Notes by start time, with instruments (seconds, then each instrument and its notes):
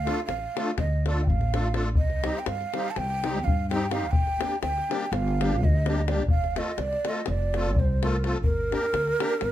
Already playing: ney F5
0.04 accordion A3 D4 F4 A4, davul high
0.18 davul high
0.26 upright bass A1, ney F5, davul high
0.56 accordion A3 D4 F4 A4, davul high
0.68 davul high
0.78 upright bass D2, ney D#5, davul high, davul low
1.06 accordion A3 D4 F4 A4, ney D5, davul high
1.23 ney G5, davul low
1.28 upright bass A1, ney F5
1.41 davul high
1.53 accordion A3 D4 F4 A4, davul high
1.65 davul high
1.74 accordion A3 D4 F4 A4, davul high
1.95 upright bass C2, ney D#5, davul low
2.10 davul high
2.24 accordion G3 C4 D#4 G4, davul high
2.37 ney G5, davul high
2.46 upright bass G2, ney F5, davul high
2.61 davul high
2.74 accordion G3 C4 D#4 G4, davul high
2.86 davul high
2.90 ney A5
2.96 upright bass C2, ney G5, davul high
3.10 davul high
3.23 accordion G3 C4 D#4 G4, davul high
3.36 davul high
3.44 upright bass G2, ney F5, davul low
3.70 accordion G3 C4 D#4 G4, ney G5, davul high
3.91 accordion G3 C4 D#4 G4, ney F5, davul high
4.11 upright bass G1, ney G5, davul low
4.27 davul high
4.39 accordion G3 A#3 D4 G4, davul high
4.52 davul high
4.62 upright bass D2, ney G5, davul high
4.78 davul high
4.89 accordion G3 A#3 D4 G4, davul high
5.03 ney G5, davul high
5.12 upright bass G1, ney F5, davul high
5.28 davul high
5.41 accordion G3 A#3 D4 G4, davul high
5.52 davul high
5.62 upright bass D2, ney D#5, davul low
5.86 accordion G3 A#3 D4 G4, davul high
6.08 accordion G3 A#3 D4 G4, ney D5, davul high
6.28 upright bass F1, ney F5, davul low
6.44 davul high
6.56 accordion A3 C4 F4 A4, ney D#5, davul high
6.68 davul high
6.78 upright bass C2, ney D5, davul high
6.93 davul high
7.05 accordion A3 C4 F4 A4, ney D#5, davul high
7.15 davul high
7.26 upright bass F1, ney D5, davul high
7.54 accordion A3 C4 F4 A4, davul high
7.66 davul high
7.76 upright bass C2, ney C5, davul low
8.02 accordion A3 C4 F4 A4, ney A#4, davul high
8.24 accordion A3 C4 F4 A4, davul high
8.44 upright bass G1, ney A#4, davul low
8.71 accordion A#3 D4 G4 A#4, davul high
8.93 upright bass D2, davul high
9.07 davul high
9.20 accordion A#3 D4 G4 A#4, davul high
9.30 davul high
9.41 upright bass G1, davul high